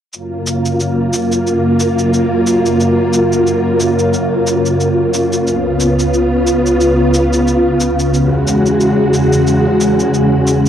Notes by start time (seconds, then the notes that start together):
0.13 F#2 C#3 A#3 F4, cabasa
0.47 cabasa
0.65 cabasa
0.80 cabasa
1.13 cabasa
1.32 cabasa
1.47 cabasa
1.80 cabasa
1.99 cabasa
2.14 cabasa
2.47 cabasa
2.66 cabasa
2.80 cabasa
3.13 cabasa
3.33 cabasa
3.47 cabasa
3.80 cabasa
3.99 cabasa
4.14 cabasa
4.47 cabasa
4.66 cabasa
4.81 cabasa
5.14 cabasa
5.33 cabasa
5.47 C#2 B3 F4, cabasa
5.80 cabasa
6.00 cabasa
6.14 cabasa
6.47 cabasa
6.66 cabasa
6.81 cabasa
7.14 cabasa
7.33 cabasa
7.48 cabasa
7.80 cabasa
8.00 cabasa
8.14 E2 G#3 F#4, cabasa
8.47 cabasa
8.66 cabasa
8.81 cabasa
9.14 cabasa
9.33 cabasa
9.47 cabasa
9.81 cabasa
10.00 cabasa
10.14 cabasa
10.48 cabasa